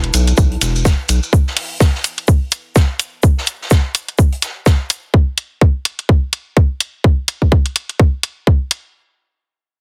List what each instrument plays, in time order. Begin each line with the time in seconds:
Already playing: analog synth bass E1, ambient pad E4 B4 A5
0.04 closed hi-hat
0.14 analog synth bass B1, closed hi-hat, shaker, maracas
0.27 closed hi-hat, maracas
0.37 analog synth bass B1, kick, maracas, shaker
0.52 closed hi-hat
0.61 analog synth bass E1, snare, closed hi-hat, maracas, shaker
0.76 maracas
0.85 kick, snare, shaker, maracas
1.09 analog synth bass B1, closed hi-hat, maracas, shaker
1.23 maracas
1.33 kick, shaker
1.47 snare
1.56 snare, closed hi-hat, open hi-hat
1.80 kick, snare, shaker
1.94 snare
2.04 closed hi-hat, shaker
2.18 closed hi-hat
2.28 kick, shaker
2.52 closed hi-hat, shaker
2.75 kick, snare, shaker
2.99 closed hi-hat, shaker
3.23 kick, shaker
3.37 snare
3.46 closed hi-hat, shaker
3.61 snare
3.71 kick, snare, shaker
3.95 closed hi-hat, shaker
4.08 closed hi-hat
4.19 kick, shaker
4.32 closed hi-hat
4.42 snare, closed hi-hat, shaker
4.66 kick, snare, shaker
4.90 closed hi-hat, shaker
5.14 kick
5.38 closed hi-hat
5.61 kick
5.85 closed hi-hat
5.99 closed hi-hat
6.09 kick
6.33 closed hi-hat
6.57 kick
6.80 closed hi-hat
7.04 kick
7.28 closed hi-hat
7.42 kick
7.52 kick
7.66 closed hi-hat
7.76 closed hi-hat
7.89 closed hi-hat
7.99 kick
8.23 closed hi-hat
8.47 kick
8.71 closed hi-hat